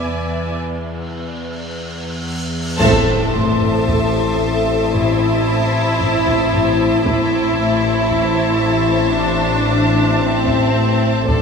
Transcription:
Already playing: E2 B3 B4 D5 E5 G#5 B5, cymbal swell
0.04 E2
2.78 A1 A2 C4 E4 A4 C5 E5 A5 C6 D6 D#6, taiko, impact
3.33 A3 C6, taiko low
3.61 taiko low
3.87 A2, taiko
4.41 A2
4.94 A2 E4, taiko low
5.47 A2
6.00 A2, taiko low
6.27 taiko
6.53 A3, taiko low
7.05 A1 A2 C4 E4 C5 E5 A5, taiko
7.15 D6
7.59 A3
7.94 C#6
8.11 A2, taiko
8.63 A2
9.15 A2 D4
9.69 A2
10.21 C4
10.47 taiko
10.74 A3
11.27 A1 A2 C4 D4 A4 C5 D5 A5 D6, taiko

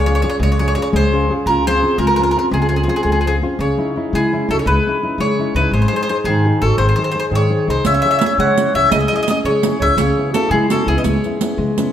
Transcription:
Already playing: C#2 G#3 G#4
0.05 C#4 F4 G#4 C#5
0.15 C#5
0.22 C#4 F4 G#4 C#5
0.30 C#5
0.39 C#2 G#3 G#4 C#5
0.52 C#5
0.59 C#4 F4 G#4 C#5
0.68 C#5
0.75 C#4 F4 G#4 C#5
0.82 C#5
0.92 C#2 G#3 G#4 C5
1.13 C#4 F4 G#4
1.30 C#4 F4 G#4
1.46 C#2 C#3 F4 A#4
1.66 C4 C#4 F4 G#4 C5
1.83 C4 C#4 F4
1.98 C#2 G#3 F4 A#4
2.07 A#4
2.16 C4 C#4 F4 A#4
2.23 A#4
2.31 A#4
2.36 C4 C#4 F4 A#4
2.51 C#2 G#3 F4 G#4
2.62 G#4
2.69 C4 C#4 F4 G#4
2.76 G#4
2.84 C4 C#4 G#4
2.88 F4 G#4
2.96 G#4
3.03 C#2 G#3 G#4
3.12 G#4
3.21 G#4
3.26 C4 C#4 F4 G#4
3.42 C4 C#4 F4
3.59 C#2 C#3 G#4 C#5
3.77 C#4 D#4 E4
3.96 C#4 D#4 E4
4.13 C#3 G#3 E4 G#4
4.32 C#4 D#4 E4
4.49 C#2 C#4 D#4 E4 F#4 A4
4.61 A4
4.66 C#2 G#3 G#4 B4
4.87 C#4 D#4 E4
5.03 C#4 D#4 E4
5.18 C#3 G#3 G#4 C#5
5.38 C#4 D#4 E4
5.54 C#2 C#4 D#4 E4 B4
5.59 G#4
5.71 G#1 G#3 C5
5.76 G#4
5.82 C5
5.88 C5
5.92 D#4 G#4 C5
6.03 C5
6.09 D#4 G#4 C5
6.24 G#2 D#3 D#4 G#4
6.45 D#4 G#4 C5
6.61 G#1 D#4 F#4 G#4 A4 C5
6.78 G#1 D#3 G#4 C5
6.89 C5
6.96 D#4 G#4 C5
7.04 C5
7.12 D#4 G#4 C5
7.19 C5
7.31 G#2 D#3 G#4
7.35 C#5
7.50 D#4 G#4 C5
7.67 C2 D#4 G#4 C5
7.85 C#2 C#3 C#5 E5, riq
7.94 E5
8.02 C#4 E4 G#4 E5
8.11 E5
8.19 C#4 E4 G#4 E5, riq
8.26 E5
8.38 C#3 G#3 C#5 F#5
8.57 C#4 E4 G#4, riq
8.74 C#2 C#4 E4 G#4 C#5 E5
8.91 C#2 G#3 G#4 D#5, riq
9.00 D#5
9.08 C#4 D#5
9.13 E4 G#4 D#5
9.23 D#5
9.28 C#4 E4 G#4 D#5, riq
9.44 C#3 G#3 G#4 C#5
9.63 C#4 E4 G#4, riq
9.80 C#2 C#4 E4 G#4 C#5 E5
9.97 C#2 C#3 G#4 C#5, riq
10.18 B3 C#4 E4
10.32 B3 C#4 E4 F#4 A4, riq
10.50 C#3 G#3 E4 G#4
10.69 B3 C#4 F#4 A4, riq
10.73 E4
10.85 C#2 B3 C#4 E4 G#4
10.97 B4 D#5
11.04 C#2 G#3 G#4 C#5, riq
11.24 B3 C#4 E4, riq
11.41 B3 C#4 E4, riq
11.58 C#3 G#3
11.78 B3 C#4 E4, riq

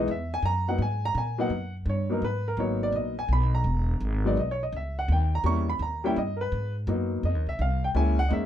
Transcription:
0.08 E2 E5
0.34 G#5
0.42 F#2 A#5
0.68 F#3 A#3 B3 D#4 F#5
0.78 G#2 G#5
1.05 A#5
1.15 A#2 G#5
1.38 F#3 A#3 B3 D#4 F#5
1.50 F#2
1.86 G2 C#5
2.09 F#3 A#3 B3 D#4 A#4
2.22 G#2 B4
2.48 A#4
2.57 G#1 F#3 A#3 B3 D#4 C#5
2.83 D5
2.92 A#1 D#5
3.19 G#5
3.28 B1
3.33 B5
3.55 A#5
3.64 E1
4.00 G#1
4.25 F#3 G#3 B3 D#4 D5
4.37 B1 D#5
4.51 C#5
4.63 D#5
4.72 C#2 E5
4.99 F#5
5.08 D#2 G5
5.35 A#5
5.44 E2 G3 A#3 C#4 E4 C#6
5.70 B5
5.79 D#2 A#5
6.04 G3 A#3 C#4 E4 G5
6.16 G2 D#5
6.37 A#4
6.41 B4
6.52 G#2
6.87 F#2 F#3 A#3 B3 D#4
7.23 F2 D#5
7.35 D#2
7.47 C2 E5
7.59 C2 F5
7.84 G5
7.94 C#2 G#3 A#3 C#4 E4 G#5
8.19 F#5
8.29 E2 G#3 A#3 C#4 D#4 D#5
8.33 E5

